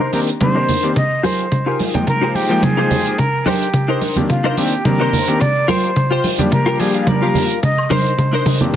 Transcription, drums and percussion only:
0.13 open hi-hat loud
0.13 muted conga soft
0.28 closed hi-hat medium
0.40 kick loud
0.40 closed hi-hat medium
0.40 mid tom medium
0.40 high conga medium
0.68 open hi-hat loud
0.68 low conga medium
0.83 closed hi-hat medium
0.96 kick loud
0.96 closed hi-hat medium
0.96 mid tom soft
1.24 open hi-hat loud
1.24 high conga medium
1.39 closed hi-hat medium
1.52 kick loud
1.52 closed hi-hat medium
1.52 mid tom soft
1.79 open hi-hat loud
1.79 muted conga medium
1.94 closed hi-hat medium
1.94 high conga medium
1.94 low conga medium
2.07 kick loud
2.07 closed hi-hat medium
2.07 mid tom medium
2.35 open hi-hat loud
2.35 muted conga medium
2.50 closed hi-hat medium
2.62 kick loud
2.62 closed hi-hat medium
2.62 mid tom medium
2.62 high conga medium
2.91 open hi-hat loud
2.91 muted conga medium
2.91 low conga medium
3.06 closed hi-hat medium
3.19 kick loud
3.19 closed hi-hat medium
3.19 mid tom medium
3.46 open hi-hat medium
3.46 high conga medium
3.62 closed hi-hat medium
3.74 kick loud
3.74 closed hi-hat medium
3.74 mid tom medium
4.01 open hi-hat loud
4.01 muted conga medium
4.16 closed hi-hat medium
4.16 high conga medium
4.16 low conga medium
4.30 kick loud
4.30 closed hi-hat medium
4.30 mid tom medium
4.57 open hi-hat loud
4.57 muted conga medium
4.72 closed hi-hat medium
4.85 kick loud
4.85 closed hi-hat medium
4.85 mid tom medium
4.85 high conga medium
5.13 open hi-hat loud
5.13 low conga medium
5.27 closed hi-hat medium
5.41 kick loud
5.41 closed hi-hat medium
5.41 mid tom medium
5.68 open hi-hat loud
5.68 high conga loud
5.84 closed hi-hat medium
5.96 kick loud
5.96 closed hi-hat medium
5.96 mid tom medium
6.24 open hi-hat loud
6.24 muted conga medium
6.38 closed hi-hat medium
6.38 high conga medium
6.38 low conga medium
6.52 kick loud
6.52 closed hi-hat medium
6.52 mid tom medium
6.80 open hi-hat loud
6.80 muted conga medium
6.94 closed hi-hat medium
7.07 kick loud
7.07 closed hi-hat medium
7.07 mid tom medium
7.07 high conga medium
7.35 open hi-hat loud
7.35 muted conga medium
7.35 low conga medium
7.50 closed hi-hat medium
7.63 kick loud
7.63 closed hi-hat medium
7.63 mid tom medium
7.78 high woodblock medium
7.90 open hi-hat loud
7.90 mid tom medium
7.90 high conga medium
8.06 closed hi-hat medium
8.18 kick loud
8.18 closed hi-hat medium
8.18 mid tom medium
8.46 open hi-hat loud
8.46 mid tom medium
8.46 muted conga medium
8.61 closed hi-hat medium
8.61 high conga medium
8.61 low conga medium

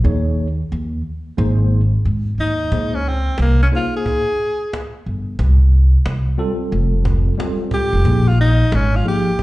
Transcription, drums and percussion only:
2.72 cajon bass loud
3.06 cajon slap soft
3.38 cajon slap medium
3.72 cajon slap soft
4.05 cajon bass medium
4.05 cajon slap medium
4.40 cajon slap soft
4.73 cajon slap medium
5.06 cajon slap soft
5.39 cajon bass medium
5.73 cajon slap soft
6.06 cajon slap loud
6.39 cajon slap soft
6.72 cajon slap soft
7.05 cajon bass medium
7.40 cajon slap loud
7.71 cajon bass medium
8.05 cajon bass loud
8.39 cajon slap soft
8.72 cajon slap loud
9.05 cajon slap soft
9.39 cajon bass medium
9.39 cajon slap soft

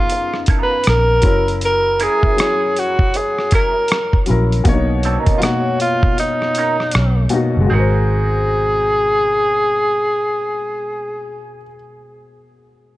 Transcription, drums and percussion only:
0.10 closed hi-hat medium
0.34 cross-stick soft
0.46 kick medium
0.46 closed hi-hat medium
0.84 cross-stick medium
0.84 closed hi-hat medium
1.22 kick medium
1.22 closed hi-hat medium
1.48 closed hi-hat soft
1.61 closed hi-hat medium
2.00 closed hi-hat medium
2.23 kick medium
2.38 cross-stick loud
2.38 closed hi-hat medium
2.76 closed hi-hat medium
2.99 kick medium
3.14 closed hi-hat medium
3.38 cross-stick soft
3.51 kick medium
3.51 closed hi-hat medium
3.88 cross-stick loud
3.88 closed hi-hat medium
4.13 kick medium
4.26 closed hi-hat medium
4.52 closed hi-hat soft
4.65 kick medium
4.65 closed hi-hat medium
5.03 closed hi-hat medium
5.26 kick medium
5.26 closed hi-hat soft
5.42 cross-stick medium
5.42 closed hi-hat medium
5.80 closed hi-hat medium
6.03 kick medium
6.18 closed hi-hat medium
6.42 cross-stick soft
6.55 closed hi-hat medium
6.80 cross-stick soft
6.91 cross-stick medium
6.91 closed hi-hat medium
7.29 closed hi-hat medium

